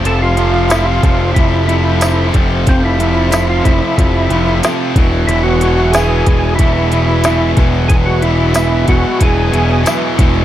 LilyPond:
<<
  \new Staff \with { instrumentName = "Tonewheel organ" } { \time 4/4 \key e \dorian \tempo 4 = 92 a'16 f'8. e'16 f'8. e'8 e'4 r8 | c'16 e'8. e'16 f'16 e'4. r4 | e'16 fis'8. gis'4 e'4. r8 | gis'16 fis'16 e'8 e'8 fis'8 gis'4 r4 | }
  \new Staff \with { instrumentName = "Steel-string acoustic guitar" } { \time 4/4 \key e \dorian <f, c f a c' f'>8 <f a c' f'>16 <f a c' f'>16 <f, c f a c' f'>8. <f a c' f'>8 <f a c' f'>16 <f a c'>8 <f, c f a c'>8 <f a c' f'>16 <f a c' f'>16 | <f, c f a c' f'>8 <f a c' f'>16 <f a c' f'>16 <f, c f a c' f'>8. <f a c'>8 <f a c' f'>16 <f a c' f'>16 <f a c' f'>16 <f, c f a c' f'>8 <fis gis b e'>16 <fis gis b e'>16 | <e, b, fis gis b e'>8 <fis gis e'>16 <fis gis b e'>16 <e, b, fis gis b e'>8. <fis gis b e'>8 <fis gis b>16 <fis gis e'>16 <fis gis b e'>16 <e, b, fis gis b e'>8 <fis gis b e'>16 <fis gis b e'>16 | <e, b, fis gis b e'>8 <b e'>16 <fis gis b e'>16 <e, b, fis gis b e'>8. <fis gis b>8 <fis gis b e'>16 <fis gis b e'>16 <fis gis b e'>16 <e, b, fis gis b e'>8 <fis gis b e'>16 <fis gis b e'>16 | }
  \new Staff \with { instrumentName = "Distorted electric guitar" } { \clef bass \time 4/4 \key e \dorian <f, c f>8 <f, c f>8 <f, c f>8 <f, c f>8 <f, c f>8 <f, c f>8 <f, c f>8 <f, c f>8 | <f, c f>8 <f, c f>8 <f, c f>8 <f, c f>8 <f, c f>8 <f, c f>8 <f, c f>8 <e, b, e>8 | <e, b, e>8 <e, b, e>8 <e, b, e>8 <e, b, e>8 <e, b, e>8 <e, b, e>8 <e, b, e>8 <e, b, e>8 | <e, b, e>8 <e, b, e>8 <e, b, e>8 <e, b, e>8 <e, b, e>8 <e, b, e>8 <e, b, e>8 <e, b, e>8 | }
  \new Staff \with { instrumentName = "Picked electric bass" } { \clef bass \time 4/4 \key e \dorian f,,4. f,,8 f,,4. f,,8 | f,,4. f,,16 r16 f,,8 f,,8 r8 e,,8 | e,,4. e,,8 e,,4. e,,8 | e,,4. e,,16 r16 e,,8 e,,8 r8 e,,8 | }
  \new DrumStaff \with { instrumentName = "Drums" } \drummode { \time 4/4 hh8 hh8 <hh sn tamb>8 <hh bd>8 <hh bd>8 hh8 <hh sn tamb>8 <hh bd>8 | <hh bd>8 hh8 <hh sn tamb>8 <hh bd>8 <hh bd>8 hh8 <hh sn tamb>8 <hh bd>8 | hh8 hh8 <hh sn tamb>8 <hh bd>8 <hh bd>8 hh8 <hh sn tamb>8 <hh bd>8 | <hh bd>8 hh8 <hh sn tamb>8 <hh bd>8 <hh bd>8 hh8 <hh sn tamb>8 <hh bd>8 | }
>>